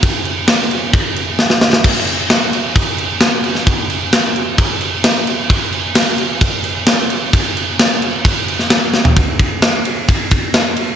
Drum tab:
CC |x-x-x-x-x-x-----|x-x-x-x-x-x-x-x-|x-x-x-x-x-x-x-x-|x-x-x-x-x-x-x-x-|
RD |----------------|----------------|----------------|----------------|
SD |----o-------oooo|----o-------o--o|----o-------o---|----o-------o---|
FT |----------------|----------------|----------------|----------------|
BD |o-------o-------|o-------o-------|o-------o-------|o-------o-------|

CC |x-x-x-x-x-x-x---|----------------|
RD |----------------|x-x-x-x-x-x-x-x-|
SD |----o------oo-o-|----o-------o---|
FT |---------------o|----------------|
BD |o-------o-------|o-o-----o-o-----|